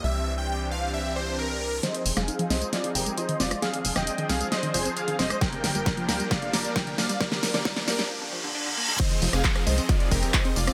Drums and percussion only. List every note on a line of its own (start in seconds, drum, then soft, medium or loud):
1.83 snare soft
1.83 closed hi-hat medium
1.83 tambourine soft
1.94 closed hi-hat medium
2.06 open hi-hat loud
2.06 tambourine medium
2.17 cross-stick medium
2.17 snare soft
2.17 closed hi-hat medium
2.17 tambourine soft
2.28 closed hi-hat medium
2.28 tambourine soft
2.39 closed hi-hat medium
2.50 snare soft
2.50 open hi-hat medium
2.50 tambourine medium
2.62 closed hi-hat soft
2.62 tambourine soft
2.73 snare soft
2.73 closed hi-hat medium
2.73 tambourine soft
2.84 closed hi-hat soft
2.95 open hi-hat loud
2.95 tambourine medium
3.06 closed hi-hat medium
3.06 tambourine soft
3.18 closed hi-hat medium
3.18 tambourine soft
3.29 closed hi-hat medium
3.40 snare medium
3.40 open hi-hat medium
3.40 tambourine medium
3.51 cross-stick medium
3.51 closed hi-hat medium
3.51 tambourine soft
3.62 snare medium
3.62 closed hi-hat medium
3.62 tambourine soft
3.74 closed hi-hat medium
3.85 open hi-hat loud
3.85 tambourine medium
3.96 cross-stick medium
3.96 snare medium
3.96 closed hi-hat soft
3.96 tambourine soft
4.07 closed hi-hat medium
4.07 tambourine soft
4.18 closed hi-hat medium
4.29 snare medium
4.29 open hi-hat medium
4.29 tambourine medium
4.41 closed hi-hat soft
4.41 tambourine soft
4.52 snare medium
4.52 closed hi-hat medium
4.52 tambourine soft
4.63 closed hi-hat medium
4.74 open hi-hat loud
4.74 tambourine medium
4.85 closed hi-hat medium
4.85 tambourine soft
4.97 closed hi-hat medium
4.97 tambourine soft
5.08 closed hi-hat medium
5.19 snare medium
5.19 open hi-hat medium
5.19 tambourine medium
5.30 cross-stick medium
5.30 closed hi-hat medium
5.30 tambourine soft
5.41 kick loud
5.41 snare medium
5.41 closed hi-hat medium
5.41 tambourine soft
5.53 closed hi-hat medium
5.64 snare medium
5.64 open hi-hat loud
5.64 tambourine medium
5.75 closed hi-hat soft
5.75 tambourine soft
5.86 kick loud
5.86 snare medium
5.86 closed hi-hat medium
5.86 tambourine soft
5.97 closed hi-hat medium
6.09 snare medium
6.09 open hi-hat loud
6.09 tambourine medium
6.20 closed hi-hat soft
6.20 tambourine soft
6.31 kick loud
6.31 snare medium
6.31 closed hi-hat medium
6.31 tambourine soft
6.42 closed hi-hat medium
6.53 snare medium
6.53 open hi-hat loud
6.53 tambourine medium
6.65 closed hi-hat medium
6.65 tambourine soft
6.76 kick loud
6.76 snare medium
6.76 closed hi-hat medium
6.76 tambourine soft
6.87 closed hi-hat soft
6.98 snare medium
6.98 open hi-hat medium
6.98 tambourine medium
7.09 closed hi-hat medium
7.09 tambourine soft
7.21 kick loud
7.21 snare medium
7.21 closed hi-hat medium
7.21 tambourine soft
7.32 snare medium
7.32 closed hi-hat medium
7.43 snare medium
7.43 open hi-hat loud
7.43 tambourine medium
7.54 snare medium
7.54 closed hi-hat soft
7.54 tambourine soft
7.65 kick loud
7.65 snare medium
7.65 closed hi-hat medium
7.65 tambourine soft
7.77 snare medium
7.77 closed hi-hat medium
7.88 snare loud
7.88 open hi-hat loud
7.88 tambourine medium
7.99 snare medium
7.99 closed hi-hat soft
7.99 tambourine soft
9.00 kick loud
9.00 closed hi-hat medium
9.00 tambourine soft
9.00 crash loud
9.11 closed hi-hat medium
9.22 open hi-hat loud
9.22 tambourine medium
9.33 cross-stick medium
9.33 closed hi-hat medium
9.33 tambourine soft
9.44 kick loud
9.44 clap loud
9.44 closed hi-hat medium
9.44 tambourine soft
9.56 cross-stick medium
9.56 closed hi-hat medium
9.67 open hi-hat loud
9.67 tambourine medium
9.78 closed hi-hat soft
9.78 tambourine soft
9.89 kick loud
9.89 closed hi-hat medium
9.89 tambourine soft
10.00 closed hi-hat medium
10.11 kick medium
10.11 open hi-hat loud
10.11 tambourine medium
10.23 closed hi-hat medium
10.23 tambourine soft
10.34 kick loud
10.34 clap loud
10.34 closed hi-hat medium
10.34 tambourine soft
10.45 closed hi-hat medium
10.56 open hi-hat medium
10.56 tambourine medium
10.67 cross-stick medium
10.67 closed hi-hat medium
10.67 tambourine soft